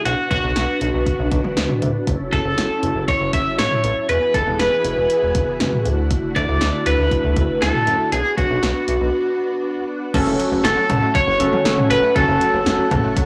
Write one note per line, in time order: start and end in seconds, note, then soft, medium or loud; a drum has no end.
0.00 2.03 F#4 medium
0.06 0.15 B1 loud
0.06 2.05 B3 medium
0.06 2.05 D4 medium
0.06 0.29 F#4 medium
0.06 closed hi-hat medium
0.31 0.40 B1 medium
0.31 1.78 F#4 medium
0.31 kick medium
0.31 closed hi-hat medium
0.43 0.53 B1 loud
0.56 0.65 B1 loud
0.56 snare loud
0.56 closed hi-hat medium
0.81 0.90 B1 medium
0.81 closed hi-hat medium
0.94 1.03 B1 loud
1.06 kick medium
1.06 closed hi-hat medium
1.19 1.28 B1 loud
1.31 1.41 B1 loud
1.31 kick medium
1.31 closed hi-hat medium
1.44 mid tom loud
1.57 1.66 D2 medium
1.57 snare loud
1.57 closed hi-hat medium
1.70 mid tom medium
1.82 1.91 D2 medium
1.82 closed hi-hat medium
1.82 mid tom medium
2.07 2.16 F#1 loud
2.07 4.07 F#3 medium
2.07 4.07 C#4 medium
2.07 4.07 E4 medium
2.07 4.07 A4 medium
2.07 kick loud
2.07 closed hi-hat medium
2.33 2.42 F#1 loud
2.33 3.04 A4 medium
2.33 kick medium
2.33 closed hi-hat medium
2.45 2.54 F#1 medium
2.58 2.67 F#1 loud
2.58 snare loud
2.58 closed hi-hat medium
2.83 2.92 F#1 loud
2.83 closed hi-hat medium
2.96 3.05 F#1 loud
3.08 3.33 C#5 loud
3.08 kick medium
3.08 closed hi-hat medium
3.21 3.30 F#1 medium
3.33 3.43 F#1 loud
3.33 3.58 E5 loud
3.33 kick medium
3.33 closed hi-hat medium
3.59 3.68 A1 medium
3.59 4.09 C#5 loud
3.59 snare loud
3.59 closed hi-hat medium
3.71 mid tom medium
3.84 3.93 A1 loud
3.84 closed hi-hat medium
4.09 4.18 E1 loud
4.09 5.84 E3 medium
4.09 5.84 B3 medium
4.09 10.10 F#4 medium
4.09 5.84 G#4 medium
4.09 4.35 B4 loud
4.09 closed hi-hat medium
4.34 4.43 E1 medium
4.34 4.58 A4 medium
4.34 kick medium
4.34 closed hi-hat medium
4.47 4.56 E1 loud
4.59 4.69 E1 loud
4.59 5.82 B4 medium
4.59 snare loud
4.59 closed hi-hat medium
4.85 4.94 E1 loud
4.85 closed hi-hat medium
4.97 5.06 E1 medium
5.10 closed hi-hat medium
5.23 5.32 E1 loud
5.35 5.44 E1 loud
5.35 kick medium
5.35 closed hi-hat medium
5.60 5.70 F#1 medium
5.60 snare loud
5.60 closed hi-hat medium
5.73 mid tom medium
5.85 6.13 D2 medium
5.85 8.10 D3 medium
5.85 8.10 A3 medium
5.85 8.10 E4 medium
5.85 closed hi-hat medium
6.11 kick loud
6.11 closed hi-hat medium
6.36 6.45 D2 loud
6.36 6.86 D5 loud
6.36 kick medium
6.36 closed hi-hat medium
6.49 6.58 D2 loud
6.61 6.70 D2 loud
6.61 snare loud
6.61 closed hi-hat medium
6.86 6.95 D2 loud
6.86 7.64 B4 loud
6.86 closed hi-hat medium
6.99 7.08 D2 loud
7.11 kick medium
7.11 closed hi-hat medium
7.24 7.33 D2 loud
7.36 7.46 D2 loud
7.36 kick medium
7.36 closed hi-hat medium
7.62 7.71 D2 loud
7.62 8.09 A4 loud
7.62 snare loud
7.62 closed hi-hat medium
7.75 mid tom medium
7.87 7.96 F#2 medium
7.87 closed hi-hat medium
8.12 8.22 B1 loud
8.12 10.12 B3 medium
8.12 10.12 D4 medium
8.12 8.37 G#4 medium
8.12 closed hi-hat medium
8.38 8.47 B1 loud
8.38 9.85 F#4 medium
8.38 kick medium
8.38 closed hi-hat medium
8.50 8.59 B1 loud
8.63 8.72 B1 loud
8.63 snare loud
8.63 closed hi-hat medium
8.88 8.97 B1 loud
8.88 closed hi-hat medium
9.01 9.10 B1 loud
10.14 10.23 F#1 loud
10.14 10.21 F#3 loud
10.14 13.26 A3 medium
10.14 10.83 C#4 medium
10.14 13.26 C#4 medium
10.14 10.83 F#4 medium
10.14 13.26 F#4 medium
10.14 10.83 A4 loud
10.14 kick loud
10.14 closed hi-hat medium
10.14 crash loud
10.27 10.36 F#1 loud
10.27 10.33 A3 medium
10.39 10.46 F#3 medium
10.39 closed hi-hat medium
10.52 10.61 F#1 loud
10.52 10.59 F#3 medium
10.64 10.74 F#1 loud
10.64 10.71 C#4 medium
10.64 11.17 A4 medium
10.64 snare loud
10.64 closed hi-hat medium
10.77 10.84 F#3 medium
10.90 10.99 F#1 loud
10.90 10.96 F#3 medium
10.90 closed hi-hat medium
10.90 mid tom medium
10.90 cowbell medium
11.02 11.09 A3 medium
11.15 11.21 F#3 medium
11.15 11.90 C#5 loud
11.15 kick loud
11.15 closed hi-hat medium
11.28 11.37 F#1 loud
11.40 11.49 F#1 loud
11.40 11.47 F#3 medium
11.40 11.57 C#4 medium
11.40 11.57 F#4 medium
11.40 11.57 A4 medium
11.40 closed hi-hat medium
11.53 11.59 F#3 medium
11.53 mid tom loud
11.65 11.74 F#1 loud
11.65 12.00 C#4 medium
11.65 11.72 C#4 medium
11.65 12.00 F#4 medium
11.65 12.00 A4 medium
11.65 snare loud
11.65 closed hi-hat medium
11.78 11.85 F#3 medium
11.78 mid tom medium
11.90 12.00 F#1 loud
11.90 11.97 F#3 medium
11.90 12.14 B4 loud
11.90 closed hi-hat medium
12.03 12.10 A3 medium
12.16 12.25 F#1 loud
12.16 12.22 F#3 loud
12.16 12.85 C#4 medium
12.16 12.85 F#4 medium
12.16 13.26 A4 medium
12.16 12.85 A4 medium
12.16 kick loud
12.16 closed hi-hat medium
12.28 12.37 F#1 loud
12.28 12.35 A3 medium
12.41 12.48 F#3 medium
12.41 closed hi-hat medium
12.54 12.63 F#1 loud
12.54 12.60 F#3 medium
12.66 12.75 F#1 loud
12.66 12.73 C#4 medium
12.66 snare loud
12.66 closed hi-hat medium
12.79 12.85 F#3 medium
12.91 13.01 F#1 loud
12.91 12.98 F#3 medium
12.91 kick medium
12.91 closed hi-hat medium
12.91 mid tom loud
12.91 cowbell medium
13.04 13.11 A3 medium
13.17 13.23 F#3 medium
13.17 kick loud
13.17 closed hi-hat medium